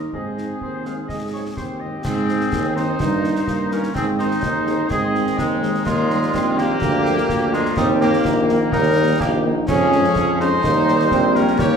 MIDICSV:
0, 0, Header, 1, 8, 480
1, 0, Start_track
1, 0, Key_signature, -4, "major"
1, 0, Tempo, 477707
1, 134, Time_signature, 2, 2, 24, 8
1, 11823, End_track
2, 0, Start_track
2, 0, Title_t, "Cornet"
2, 0, Program_c, 0, 56
2, 135, Note_on_c, 0, 68, 62
2, 1535, Note_off_c, 0, 68, 0
2, 1572, Note_on_c, 0, 67, 69
2, 2050, Note_on_c, 0, 68, 96
2, 2065, Note_off_c, 0, 67, 0
2, 2770, Note_off_c, 0, 68, 0
2, 2776, Note_on_c, 0, 72, 100
2, 3737, Note_on_c, 0, 70, 81
2, 3752, Note_off_c, 0, 72, 0
2, 3972, Note_off_c, 0, 70, 0
2, 3978, Note_on_c, 0, 68, 100
2, 4085, Note_off_c, 0, 68, 0
2, 4215, Note_on_c, 0, 72, 93
2, 4931, Note_on_c, 0, 75, 112
2, 4946, Note_off_c, 0, 72, 0
2, 5408, Note_on_c, 0, 63, 100
2, 5424, Note_off_c, 0, 75, 0
2, 5880, Note_off_c, 0, 63, 0
2, 5886, Note_on_c, 0, 65, 117
2, 6610, Note_on_c, 0, 67, 121
2, 6625, Note_off_c, 0, 65, 0
2, 7565, Note_on_c, 0, 65, 112
2, 7580, Note_off_c, 0, 67, 0
2, 7800, Note_off_c, 0, 65, 0
2, 7806, Note_on_c, 0, 63, 116
2, 7915, Note_off_c, 0, 63, 0
2, 8052, Note_on_c, 0, 67, 110
2, 8487, Note_off_c, 0, 67, 0
2, 8770, Note_on_c, 0, 70, 125
2, 9252, Note_on_c, 0, 67, 113
2, 9267, Note_off_c, 0, 70, 0
2, 9491, Note_off_c, 0, 67, 0
2, 9730, Note_on_c, 0, 68, 118
2, 10410, Note_off_c, 0, 68, 0
2, 10458, Note_on_c, 0, 72, 127
2, 11411, Note_on_c, 0, 70, 112
2, 11426, Note_off_c, 0, 72, 0
2, 11647, Note_off_c, 0, 70, 0
2, 11653, Note_on_c, 0, 73, 127
2, 11823, Note_off_c, 0, 73, 0
2, 11823, End_track
3, 0, Start_track
3, 0, Title_t, "Woodwind section"
3, 0, Program_c, 1, 71
3, 0, Note_on_c, 1, 67, 45
3, 134, Note_off_c, 1, 67, 0
3, 139, Note_on_c, 1, 72, 45
3, 143, Note_on_c, 1, 75, 41
3, 541, Note_off_c, 1, 75, 0
3, 569, Note_off_c, 1, 72, 0
3, 621, Note_on_c, 1, 72, 58
3, 841, Note_off_c, 1, 72, 0
3, 869, Note_on_c, 1, 77, 45
3, 974, Note_off_c, 1, 77, 0
3, 1091, Note_on_c, 1, 75, 50
3, 1316, Note_off_c, 1, 75, 0
3, 1339, Note_on_c, 1, 73, 43
3, 1446, Note_off_c, 1, 73, 0
3, 1582, Note_on_c, 1, 72, 52
3, 1583, Note_on_c, 1, 60, 61
3, 1802, Note_off_c, 1, 72, 0
3, 1812, Note_on_c, 1, 75, 45
3, 2025, Note_off_c, 1, 60, 0
3, 2053, Note_off_c, 1, 75, 0
3, 2057, Note_on_c, 1, 60, 88
3, 2735, Note_off_c, 1, 60, 0
3, 2774, Note_on_c, 1, 63, 88
3, 3694, Note_off_c, 1, 63, 0
3, 3734, Note_on_c, 1, 61, 70
3, 3962, Note_on_c, 1, 60, 95
3, 3974, Note_off_c, 1, 61, 0
3, 4072, Note_off_c, 1, 60, 0
3, 4210, Note_on_c, 1, 63, 91
3, 4891, Note_off_c, 1, 63, 0
3, 4929, Note_on_c, 1, 68, 87
3, 5377, Note_off_c, 1, 68, 0
3, 5411, Note_on_c, 1, 56, 87
3, 5858, Note_off_c, 1, 56, 0
3, 5881, Note_on_c, 1, 56, 93
3, 6566, Note_off_c, 1, 56, 0
3, 6606, Note_on_c, 1, 58, 96
3, 7529, Note_off_c, 1, 58, 0
3, 7569, Note_on_c, 1, 56, 96
3, 7793, Note_off_c, 1, 56, 0
3, 7815, Note_on_c, 1, 55, 96
3, 8044, Note_on_c, 1, 58, 93
3, 8053, Note_off_c, 1, 55, 0
3, 8727, Note_off_c, 1, 58, 0
3, 8764, Note_on_c, 1, 63, 107
3, 9213, Note_off_c, 1, 63, 0
3, 9246, Note_on_c, 1, 58, 98
3, 9355, Note_off_c, 1, 58, 0
3, 9724, Note_on_c, 1, 61, 112
3, 10407, Note_off_c, 1, 61, 0
3, 10449, Note_on_c, 1, 63, 105
3, 11369, Note_off_c, 1, 63, 0
3, 11415, Note_on_c, 1, 61, 91
3, 11651, Note_on_c, 1, 67, 120
3, 11652, Note_off_c, 1, 61, 0
3, 11823, Note_off_c, 1, 67, 0
3, 11823, End_track
4, 0, Start_track
4, 0, Title_t, "Euphonium"
4, 0, Program_c, 2, 58
4, 136, Note_on_c, 2, 60, 53
4, 1775, Note_off_c, 2, 60, 0
4, 2533, Note_on_c, 2, 60, 76
4, 2980, Note_off_c, 2, 60, 0
4, 3015, Note_on_c, 2, 63, 85
4, 3461, Note_off_c, 2, 63, 0
4, 3492, Note_on_c, 2, 58, 79
4, 3939, Note_off_c, 2, 58, 0
4, 3978, Note_on_c, 2, 60, 82
4, 4456, Note_on_c, 2, 63, 92
4, 4471, Note_off_c, 2, 60, 0
4, 4919, Note_off_c, 2, 63, 0
4, 4925, Note_on_c, 2, 60, 93
4, 5848, Note_off_c, 2, 60, 0
4, 5888, Note_on_c, 2, 58, 79
4, 6336, Note_off_c, 2, 58, 0
4, 6373, Note_on_c, 2, 60, 94
4, 6819, Note_off_c, 2, 60, 0
4, 6849, Note_on_c, 2, 58, 101
4, 7770, Note_off_c, 2, 58, 0
4, 7804, Note_on_c, 2, 60, 103
4, 8254, Note_off_c, 2, 60, 0
4, 8292, Note_on_c, 2, 58, 95
4, 8769, Note_on_c, 2, 55, 95
4, 8784, Note_off_c, 2, 58, 0
4, 9256, Note_on_c, 2, 63, 95
4, 9271, Note_off_c, 2, 55, 0
4, 9723, Note_off_c, 2, 63, 0
4, 9729, Note_on_c, 2, 61, 120
4, 10367, Note_off_c, 2, 61, 0
4, 10689, Note_on_c, 2, 63, 111
4, 11136, Note_off_c, 2, 63, 0
4, 11177, Note_on_c, 2, 60, 110
4, 11649, Note_on_c, 2, 58, 91
4, 11664, Note_off_c, 2, 60, 0
4, 11823, Note_off_c, 2, 58, 0
4, 11823, End_track
5, 0, Start_track
5, 0, Title_t, "French horn section"
5, 0, Program_c, 3, 60
5, 370, Note_on_c, 3, 63, 37
5, 371, Note_on_c, 3, 56, 35
5, 373, Note_on_c, 3, 60, 39
5, 457, Note_off_c, 3, 63, 0
5, 458, Note_off_c, 3, 56, 0
5, 459, Note_off_c, 3, 60, 0
5, 860, Note_on_c, 3, 56, 36
5, 860, Note_on_c, 3, 63, 35
5, 861, Note_on_c, 3, 60, 37
5, 945, Note_off_c, 3, 56, 0
5, 945, Note_off_c, 3, 63, 0
5, 946, Note_off_c, 3, 60, 0
5, 1333, Note_on_c, 3, 56, 37
5, 1333, Note_on_c, 3, 60, 35
5, 1336, Note_on_c, 3, 63, 34
5, 1419, Note_off_c, 3, 56, 0
5, 1420, Note_off_c, 3, 60, 0
5, 1422, Note_off_c, 3, 63, 0
5, 1813, Note_on_c, 3, 56, 33
5, 1816, Note_on_c, 3, 63, 35
5, 1817, Note_on_c, 3, 60, 37
5, 1900, Note_off_c, 3, 56, 0
5, 1902, Note_off_c, 3, 63, 0
5, 1903, Note_off_c, 3, 60, 0
5, 2296, Note_on_c, 3, 56, 64
5, 2297, Note_on_c, 3, 63, 58
5, 2298, Note_on_c, 3, 60, 59
5, 2382, Note_off_c, 3, 56, 0
5, 2383, Note_off_c, 3, 60, 0
5, 2383, Note_off_c, 3, 63, 0
5, 2774, Note_on_c, 3, 56, 55
5, 2776, Note_on_c, 3, 60, 59
5, 2776, Note_on_c, 3, 63, 59
5, 2860, Note_off_c, 3, 56, 0
5, 2862, Note_off_c, 3, 60, 0
5, 2862, Note_off_c, 3, 63, 0
5, 3255, Note_on_c, 3, 51, 57
5, 3259, Note_on_c, 3, 58, 61
5, 3260, Note_on_c, 3, 63, 61
5, 3341, Note_off_c, 3, 51, 0
5, 3344, Note_off_c, 3, 58, 0
5, 3345, Note_off_c, 3, 63, 0
5, 3734, Note_on_c, 3, 51, 60
5, 3734, Note_on_c, 3, 58, 59
5, 3736, Note_on_c, 3, 63, 61
5, 3820, Note_off_c, 3, 51, 0
5, 3820, Note_off_c, 3, 58, 0
5, 3822, Note_off_c, 3, 63, 0
5, 4212, Note_on_c, 3, 60, 56
5, 4215, Note_on_c, 3, 51, 65
5, 4216, Note_on_c, 3, 56, 63
5, 4299, Note_off_c, 3, 60, 0
5, 4301, Note_off_c, 3, 51, 0
5, 4302, Note_off_c, 3, 56, 0
5, 4685, Note_on_c, 3, 60, 65
5, 4687, Note_on_c, 3, 51, 63
5, 4687, Note_on_c, 3, 56, 67
5, 4773, Note_off_c, 3, 60, 0
5, 4774, Note_off_c, 3, 51, 0
5, 4775, Note_off_c, 3, 56, 0
5, 5160, Note_on_c, 3, 51, 66
5, 5161, Note_on_c, 3, 56, 65
5, 5164, Note_on_c, 3, 60, 64
5, 5249, Note_off_c, 3, 51, 0
5, 5250, Note_off_c, 3, 56, 0
5, 5252, Note_off_c, 3, 60, 0
5, 5644, Note_on_c, 3, 51, 65
5, 5644, Note_on_c, 3, 56, 72
5, 5644, Note_on_c, 3, 60, 64
5, 5732, Note_off_c, 3, 51, 0
5, 5732, Note_off_c, 3, 56, 0
5, 5733, Note_off_c, 3, 60, 0
5, 6125, Note_on_c, 3, 51, 60
5, 6125, Note_on_c, 3, 55, 69
5, 6127, Note_on_c, 3, 58, 68
5, 6213, Note_off_c, 3, 51, 0
5, 6213, Note_off_c, 3, 55, 0
5, 6214, Note_off_c, 3, 58, 0
5, 6604, Note_on_c, 3, 55, 70
5, 6607, Note_on_c, 3, 51, 72
5, 6610, Note_on_c, 3, 58, 70
5, 6692, Note_off_c, 3, 55, 0
5, 6694, Note_off_c, 3, 51, 0
5, 6697, Note_off_c, 3, 58, 0
5, 7089, Note_on_c, 3, 58, 70
5, 7092, Note_off_c, 3, 58, 0
5, 7092, Note_on_c, 3, 58, 64
5, 7094, Note_on_c, 3, 53, 67
5, 7179, Note_off_c, 3, 58, 0
5, 7180, Note_off_c, 3, 53, 0
5, 7573, Note_on_c, 3, 58, 73
5, 7574, Note_off_c, 3, 58, 0
5, 7574, Note_on_c, 3, 53, 70
5, 7574, Note_on_c, 3, 58, 81
5, 7660, Note_off_c, 3, 53, 0
5, 7660, Note_off_c, 3, 58, 0
5, 8051, Note_on_c, 3, 58, 76
5, 8054, Note_on_c, 3, 51, 70
5, 8055, Note_off_c, 3, 58, 0
5, 8055, Note_on_c, 3, 58, 73
5, 8140, Note_off_c, 3, 51, 0
5, 8140, Note_off_c, 3, 58, 0
5, 8529, Note_on_c, 3, 58, 77
5, 8531, Note_on_c, 3, 51, 78
5, 8616, Note_off_c, 3, 58, 0
5, 8618, Note_off_c, 3, 51, 0
5, 9014, Note_on_c, 3, 51, 72
5, 9015, Note_on_c, 3, 58, 75
5, 9100, Note_off_c, 3, 51, 0
5, 9101, Note_off_c, 3, 58, 0
5, 9488, Note_on_c, 3, 51, 76
5, 9488, Note_on_c, 3, 58, 81
5, 9489, Note_off_c, 3, 58, 0
5, 9489, Note_on_c, 3, 58, 71
5, 9575, Note_off_c, 3, 51, 0
5, 9576, Note_off_c, 3, 58, 0
5, 9975, Note_on_c, 3, 56, 79
5, 9975, Note_on_c, 3, 61, 75
5, 9976, Note_off_c, 3, 56, 0
5, 9976, Note_on_c, 3, 56, 77
5, 10060, Note_off_c, 3, 61, 0
5, 10061, Note_off_c, 3, 56, 0
5, 10448, Note_on_c, 3, 56, 83
5, 10449, Note_on_c, 3, 61, 80
5, 10452, Note_off_c, 3, 56, 0
5, 10452, Note_on_c, 3, 56, 85
5, 10535, Note_off_c, 3, 61, 0
5, 10538, Note_off_c, 3, 56, 0
5, 10931, Note_on_c, 3, 51, 72
5, 10931, Note_on_c, 3, 58, 67
5, 10935, Note_on_c, 3, 55, 74
5, 11017, Note_off_c, 3, 51, 0
5, 11017, Note_off_c, 3, 58, 0
5, 11020, Note_off_c, 3, 55, 0
5, 11408, Note_on_c, 3, 51, 72
5, 11409, Note_on_c, 3, 58, 78
5, 11413, Note_on_c, 3, 55, 73
5, 11495, Note_off_c, 3, 51, 0
5, 11496, Note_off_c, 3, 58, 0
5, 11498, Note_off_c, 3, 55, 0
5, 11823, End_track
6, 0, Start_track
6, 0, Title_t, "Trombone section"
6, 0, Program_c, 4, 61
6, 2059, Note_on_c, 4, 51, 73
6, 2064, Note_on_c, 4, 60, 69
6, 2979, Note_off_c, 4, 60, 0
6, 3023, Note_on_c, 4, 58, 66
6, 3936, Note_off_c, 4, 51, 0
6, 3971, Note_on_c, 4, 56, 68
6, 3974, Note_on_c, 4, 51, 68
6, 3978, Note_off_c, 4, 58, 0
6, 5852, Note_off_c, 4, 51, 0
6, 5883, Note_on_c, 4, 51, 75
6, 5886, Note_on_c, 4, 55, 74
6, 5891, Note_off_c, 4, 56, 0
6, 6807, Note_off_c, 4, 51, 0
6, 6808, Note_off_c, 4, 55, 0
6, 6847, Note_on_c, 4, 53, 79
6, 6849, Note_on_c, 4, 58, 84
6, 7769, Note_off_c, 4, 53, 0
6, 7800, Note_off_c, 4, 58, 0
6, 7810, Note_on_c, 4, 51, 99
6, 7812, Note_on_c, 4, 58, 92
6, 9557, Note_off_c, 4, 51, 0
6, 9557, Note_off_c, 4, 58, 0
6, 9728, Note_on_c, 4, 61, 96
6, 9733, Note_on_c, 4, 53, 96
6, 10648, Note_off_c, 4, 61, 0
6, 10651, Note_off_c, 4, 53, 0
6, 10686, Note_on_c, 4, 58, 101
6, 10691, Note_on_c, 4, 55, 101
6, 11823, Note_off_c, 4, 55, 0
6, 11823, Note_off_c, 4, 58, 0
6, 11823, End_track
7, 0, Start_track
7, 0, Title_t, "Tuba"
7, 0, Program_c, 5, 58
7, 136, Note_on_c, 5, 44, 51
7, 535, Note_off_c, 5, 44, 0
7, 619, Note_on_c, 5, 39, 44
7, 1016, Note_off_c, 5, 39, 0
7, 1100, Note_on_c, 5, 44, 44
7, 1497, Note_off_c, 5, 44, 0
7, 1582, Note_on_c, 5, 39, 49
7, 1978, Note_off_c, 5, 39, 0
7, 2058, Note_on_c, 5, 44, 79
7, 2456, Note_off_c, 5, 44, 0
7, 2541, Note_on_c, 5, 39, 79
7, 2938, Note_off_c, 5, 39, 0
7, 3021, Note_on_c, 5, 43, 82
7, 3417, Note_off_c, 5, 43, 0
7, 3500, Note_on_c, 5, 43, 65
7, 3897, Note_off_c, 5, 43, 0
7, 3976, Note_on_c, 5, 44, 79
7, 4374, Note_off_c, 5, 44, 0
7, 4456, Note_on_c, 5, 39, 72
7, 4854, Note_off_c, 5, 39, 0
7, 4934, Note_on_c, 5, 44, 80
7, 5333, Note_off_c, 5, 44, 0
7, 5415, Note_on_c, 5, 39, 76
7, 5813, Note_off_c, 5, 39, 0
7, 5894, Note_on_c, 5, 39, 83
7, 6293, Note_off_c, 5, 39, 0
7, 6375, Note_on_c, 5, 34, 78
7, 6773, Note_off_c, 5, 34, 0
7, 6851, Note_on_c, 5, 38, 102
7, 7251, Note_off_c, 5, 38, 0
7, 7333, Note_on_c, 5, 38, 80
7, 7732, Note_off_c, 5, 38, 0
7, 7811, Note_on_c, 5, 39, 100
7, 8211, Note_off_c, 5, 39, 0
7, 8291, Note_on_c, 5, 34, 98
7, 8691, Note_off_c, 5, 34, 0
7, 8775, Note_on_c, 5, 39, 103
7, 9173, Note_off_c, 5, 39, 0
7, 9255, Note_on_c, 5, 34, 94
7, 9653, Note_off_c, 5, 34, 0
7, 9729, Note_on_c, 5, 41, 102
7, 10129, Note_off_c, 5, 41, 0
7, 10214, Note_on_c, 5, 41, 85
7, 10612, Note_off_c, 5, 41, 0
7, 10694, Note_on_c, 5, 39, 99
7, 11092, Note_off_c, 5, 39, 0
7, 11168, Note_on_c, 5, 34, 90
7, 11569, Note_off_c, 5, 34, 0
7, 11652, Note_on_c, 5, 39, 101
7, 11823, Note_off_c, 5, 39, 0
7, 11823, End_track
8, 0, Start_track
8, 0, Title_t, "Drums"
8, 134, Note_on_c, 9, 35, 52
8, 234, Note_off_c, 9, 35, 0
8, 378, Note_on_c, 9, 38, 33
8, 479, Note_off_c, 9, 38, 0
8, 616, Note_on_c, 9, 35, 49
8, 716, Note_off_c, 9, 35, 0
8, 856, Note_on_c, 9, 38, 30
8, 956, Note_off_c, 9, 38, 0
8, 1097, Note_on_c, 9, 35, 54
8, 1097, Note_on_c, 9, 38, 42
8, 1197, Note_off_c, 9, 35, 0
8, 1197, Note_off_c, 9, 38, 0
8, 1578, Note_on_c, 9, 35, 59
8, 1578, Note_on_c, 9, 38, 42
8, 1679, Note_off_c, 9, 35, 0
8, 1679, Note_off_c, 9, 38, 0
8, 2056, Note_on_c, 9, 35, 81
8, 2056, Note_on_c, 9, 38, 78
8, 2056, Note_on_c, 9, 49, 47
8, 2157, Note_off_c, 9, 35, 0
8, 2157, Note_off_c, 9, 38, 0
8, 2157, Note_off_c, 9, 49, 0
8, 2297, Note_on_c, 9, 38, 55
8, 2397, Note_off_c, 9, 38, 0
8, 2416, Note_on_c, 9, 38, 52
8, 2516, Note_off_c, 9, 38, 0
8, 2538, Note_on_c, 9, 35, 80
8, 2538, Note_on_c, 9, 38, 79
8, 2638, Note_off_c, 9, 35, 0
8, 2638, Note_off_c, 9, 38, 0
8, 2780, Note_on_c, 9, 38, 57
8, 2880, Note_off_c, 9, 38, 0
8, 3014, Note_on_c, 9, 35, 83
8, 3014, Note_on_c, 9, 38, 77
8, 3115, Note_off_c, 9, 35, 0
8, 3115, Note_off_c, 9, 38, 0
8, 3253, Note_on_c, 9, 38, 54
8, 3354, Note_off_c, 9, 38, 0
8, 3372, Note_on_c, 9, 38, 57
8, 3473, Note_off_c, 9, 38, 0
8, 3491, Note_on_c, 9, 35, 69
8, 3491, Note_on_c, 9, 38, 73
8, 3592, Note_off_c, 9, 35, 0
8, 3592, Note_off_c, 9, 38, 0
8, 3730, Note_on_c, 9, 38, 54
8, 3831, Note_off_c, 9, 38, 0
8, 3850, Note_on_c, 9, 38, 50
8, 3951, Note_off_c, 9, 38, 0
8, 3972, Note_on_c, 9, 35, 79
8, 3972, Note_on_c, 9, 38, 70
8, 4073, Note_off_c, 9, 35, 0
8, 4073, Note_off_c, 9, 38, 0
8, 4210, Note_on_c, 9, 38, 59
8, 4310, Note_off_c, 9, 38, 0
8, 4330, Note_on_c, 9, 38, 55
8, 4430, Note_off_c, 9, 38, 0
8, 4448, Note_on_c, 9, 35, 76
8, 4448, Note_on_c, 9, 38, 72
8, 4548, Note_off_c, 9, 35, 0
8, 4548, Note_off_c, 9, 38, 0
8, 4689, Note_on_c, 9, 38, 53
8, 4790, Note_off_c, 9, 38, 0
8, 4927, Note_on_c, 9, 35, 77
8, 4927, Note_on_c, 9, 38, 73
8, 5028, Note_off_c, 9, 35, 0
8, 5028, Note_off_c, 9, 38, 0
8, 5173, Note_on_c, 9, 38, 50
8, 5273, Note_off_c, 9, 38, 0
8, 5293, Note_on_c, 9, 38, 52
8, 5394, Note_off_c, 9, 38, 0
8, 5411, Note_on_c, 9, 35, 71
8, 5411, Note_on_c, 9, 38, 83
8, 5511, Note_off_c, 9, 35, 0
8, 5511, Note_off_c, 9, 38, 0
8, 5655, Note_on_c, 9, 38, 60
8, 5756, Note_off_c, 9, 38, 0
8, 5771, Note_on_c, 9, 38, 51
8, 5872, Note_off_c, 9, 38, 0
8, 5889, Note_on_c, 9, 35, 76
8, 5889, Note_on_c, 9, 38, 72
8, 5889, Note_on_c, 9, 49, 28
8, 5990, Note_off_c, 9, 35, 0
8, 5990, Note_off_c, 9, 38, 0
8, 5990, Note_off_c, 9, 49, 0
8, 6131, Note_on_c, 9, 38, 53
8, 6231, Note_off_c, 9, 38, 0
8, 6252, Note_on_c, 9, 38, 54
8, 6352, Note_off_c, 9, 38, 0
8, 6373, Note_on_c, 9, 35, 69
8, 6373, Note_on_c, 9, 38, 73
8, 6474, Note_off_c, 9, 35, 0
8, 6474, Note_off_c, 9, 38, 0
8, 6611, Note_on_c, 9, 38, 58
8, 6711, Note_off_c, 9, 38, 0
8, 6850, Note_on_c, 9, 35, 86
8, 6850, Note_on_c, 9, 38, 82
8, 6951, Note_off_c, 9, 35, 0
8, 6951, Note_off_c, 9, 38, 0
8, 7087, Note_on_c, 9, 38, 64
8, 7188, Note_off_c, 9, 38, 0
8, 7207, Note_on_c, 9, 38, 55
8, 7308, Note_off_c, 9, 38, 0
8, 7328, Note_on_c, 9, 35, 77
8, 7328, Note_on_c, 9, 38, 71
8, 7429, Note_off_c, 9, 35, 0
8, 7429, Note_off_c, 9, 38, 0
8, 7568, Note_on_c, 9, 38, 56
8, 7668, Note_off_c, 9, 38, 0
8, 7689, Note_on_c, 9, 38, 52
8, 7790, Note_off_c, 9, 38, 0
8, 7805, Note_on_c, 9, 35, 88
8, 7805, Note_on_c, 9, 38, 82
8, 7906, Note_off_c, 9, 35, 0
8, 7906, Note_off_c, 9, 38, 0
8, 8048, Note_on_c, 9, 38, 54
8, 8148, Note_off_c, 9, 38, 0
8, 8170, Note_on_c, 9, 38, 59
8, 8270, Note_off_c, 9, 38, 0
8, 8289, Note_on_c, 9, 35, 78
8, 8289, Note_on_c, 9, 38, 80
8, 8389, Note_off_c, 9, 35, 0
8, 8389, Note_off_c, 9, 38, 0
8, 8529, Note_on_c, 9, 38, 57
8, 8629, Note_off_c, 9, 38, 0
8, 8765, Note_on_c, 9, 35, 86
8, 8765, Note_on_c, 9, 38, 67
8, 8866, Note_off_c, 9, 35, 0
8, 8866, Note_off_c, 9, 38, 0
8, 9247, Note_on_c, 9, 35, 74
8, 9247, Note_on_c, 9, 38, 83
8, 9347, Note_off_c, 9, 35, 0
8, 9347, Note_off_c, 9, 38, 0
8, 9729, Note_on_c, 9, 35, 94
8, 9729, Note_on_c, 9, 38, 77
8, 9729, Note_on_c, 9, 49, 54
8, 9829, Note_off_c, 9, 35, 0
8, 9829, Note_off_c, 9, 38, 0
8, 9829, Note_off_c, 9, 49, 0
8, 9968, Note_on_c, 9, 38, 54
8, 10069, Note_off_c, 9, 38, 0
8, 10088, Note_on_c, 9, 38, 54
8, 10189, Note_off_c, 9, 38, 0
8, 10205, Note_on_c, 9, 35, 81
8, 10205, Note_on_c, 9, 38, 76
8, 10305, Note_off_c, 9, 35, 0
8, 10305, Note_off_c, 9, 38, 0
8, 10452, Note_on_c, 9, 38, 57
8, 10553, Note_off_c, 9, 38, 0
8, 10691, Note_on_c, 9, 35, 86
8, 10691, Note_on_c, 9, 38, 77
8, 10791, Note_off_c, 9, 35, 0
8, 10791, Note_off_c, 9, 38, 0
8, 10932, Note_on_c, 9, 38, 58
8, 11032, Note_off_c, 9, 38, 0
8, 11047, Note_on_c, 9, 38, 55
8, 11148, Note_off_c, 9, 38, 0
8, 11166, Note_on_c, 9, 35, 75
8, 11166, Note_on_c, 9, 38, 69
8, 11267, Note_off_c, 9, 35, 0
8, 11267, Note_off_c, 9, 38, 0
8, 11405, Note_on_c, 9, 38, 60
8, 11506, Note_off_c, 9, 38, 0
8, 11529, Note_on_c, 9, 38, 51
8, 11630, Note_off_c, 9, 38, 0
8, 11645, Note_on_c, 9, 35, 91
8, 11645, Note_on_c, 9, 38, 85
8, 11745, Note_off_c, 9, 35, 0
8, 11745, Note_off_c, 9, 38, 0
8, 11823, End_track
0, 0, End_of_file